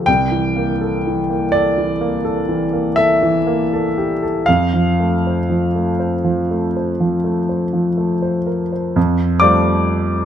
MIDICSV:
0, 0, Header, 1, 2, 480
1, 0, Start_track
1, 0, Key_signature, -1, "major"
1, 0, Tempo, 970874
1, 35, Time_signature, 9, 3, 24, 8
1, 1956, Tempo, 1013514
1, 3396, Tempo, 980392
1, 4356, Tempo, 927357
1, 5025, End_track
2, 0, Start_track
2, 0, Title_t, "Grand piano"
2, 0, Program_c, 0, 0
2, 0, Control_c, 0, 64, 127
2, 0, Note_on_c, 0, 69, 37
2, 30, Note_on_c, 0, 79, 94
2, 39, Note_on_c, 0, 36, 49
2, 45, Control_c, 0, 64, 0
2, 50, Note_off_c, 0, 69, 0
2, 117, Control_c, 0, 64, 127
2, 156, Note_on_c, 0, 52, 36
2, 278, Note_on_c, 0, 58, 35
2, 349, Note_off_c, 0, 52, 0
2, 402, Note_on_c, 0, 69, 39
2, 471, Note_off_c, 0, 58, 0
2, 530, Note_on_c, 0, 52, 38
2, 593, Note_off_c, 0, 69, 0
2, 642, Note_on_c, 0, 58, 37
2, 715, Note_off_c, 0, 52, 0
2, 750, Note_on_c, 0, 74, 80
2, 754, Note_off_c, 0, 79, 0
2, 764, Note_on_c, 0, 69, 44
2, 829, Note_off_c, 0, 58, 0
2, 879, Note_on_c, 0, 52, 41
2, 949, Note_off_c, 0, 69, 0
2, 994, Note_on_c, 0, 58, 47
2, 1066, Note_off_c, 0, 52, 0
2, 1111, Note_on_c, 0, 69, 46
2, 1184, Note_off_c, 0, 58, 0
2, 1230, Note_on_c, 0, 52, 43
2, 1303, Note_off_c, 0, 69, 0
2, 1350, Note_on_c, 0, 58, 43
2, 1422, Note_off_c, 0, 52, 0
2, 1463, Note_on_c, 0, 76, 91
2, 1468, Note_off_c, 0, 74, 0
2, 1472, Note_on_c, 0, 69, 51
2, 1542, Note_off_c, 0, 58, 0
2, 1595, Note_on_c, 0, 52, 53
2, 1664, Note_off_c, 0, 69, 0
2, 1715, Note_on_c, 0, 58, 53
2, 1787, Note_off_c, 0, 52, 0
2, 1845, Note_on_c, 0, 69, 47
2, 1909, Note_off_c, 0, 58, 0
2, 1966, Note_on_c, 0, 67, 42
2, 2033, Note_off_c, 0, 69, 0
2, 2080, Note_off_c, 0, 67, 0
2, 2084, Note_on_c, 0, 69, 45
2, 2180, Note_off_c, 0, 36, 0
2, 2193, Note_off_c, 0, 76, 0
2, 2194, Note_on_c, 0, 77, 84
2, 2201, Note_off_c, 0, 69, 0
2, 2207, Control_c, 0, 64, 0
2, 2207, Note_on_c, 0, 41, 51
2, 2284, Control_c, 0, 64, 127
2, 2325, Note_on_c, 0, 53, 38
2, 2450, Note_on_c, 0, 57, 38
2, 2516, Note_off_c, 0, 53, 0
2, 2577, Note_on_c, 0, 72, 36
2, 2638, Note_off_c, 0, 57, 0
2, 2686, Note_on_c, 0, 53, 38
2, 2761, Note_off_c, 0, 72, 0
2, 2806, Note_on_c, 0, 57, 35
2, 2875, Note_off_c, 0, 53, 0
2, 2922, Note_on_c, 0, 72, 39
2, 2995, Note_off_c, 0, 57, 0
2, 3040, Note_on_c, 0, 53, 36
2, 3113, Note_off_c, 0, 72, 0
2, 3164, Note_on_c, 0, 57, 39
2, 3231, Note_off_c, 0, 53, 0
2, 3287, Note_on_c, 0, 72, 38
2, 3352, Note_off_c, 0, 57, 0
2, 3399, Note_on_c, 0, 53, 35
2, 3473, Note_off_c, 0, 72, 0
2, 3516, Note_on_c, 0, 57, 34
2, 3590, Note_off_c, 0, 53, 0
2, 3638, Note_on_c, 0, 72, 39
2, 3706, Note_off_c, 0, 57, 0
2, 3755, Note_on_c, 0, 53, 36
2, 3827, Note_off_c, 0, 72, 0
2, 3875, Note_on_c, 0, 57, 39
2, 3947, Note_off_c, 0, 53, 0
2, 3997, Note_on_c, 0, 72, 36
2, 4069, Note_off_c, 0, 57, 0
2, 4114, Note_on_c, 0, 70, 34
2, 4117, Note_off_c, 0, 77, 0
2, 4192, Note_off_c, 0, 72, 0
2, 4238, Note_off_c, 0, 70, 0
2, 4242, Note_on_c, 0, 72, 38
2, 4343, Note_off_c, 0, 41, 0
2, 4357, Note_on_c, 0, 41, 61
2, 4358, Note_off_c, 0, 72, 0
2, 4367, Control_c, 0, 64, 0
2, 4459, Control_c, 0, 64, 127
2, 4583, Note_on_c, 0, 86, 84
2, 4592, Note_off_c, 0, 41, 0
2, 4593, Note_on_c, 0, 74, 64
2, 4594, Note_on_c, 0, 55, 41
2, 4597, Note_on_c, 0, 57, 42
2, 4598, Note_on_c, 0, 65, 42
2, 4601, Note_on_c, 0, 72, 44
2, 5025, Note_off_c, 0, 55, 0
2, 5025, Note_off_c, 0, 57, 0
2, 5025, Note_off_c, 0, 65, 0
2, 5025, Note_off_c, 0, 72, 0
2, 5025, Note_off_c, 0, 74, 0
2, 5025, Note_off_c, 0, 86, 0
2, 5025, End_track
0, 0, End_of_file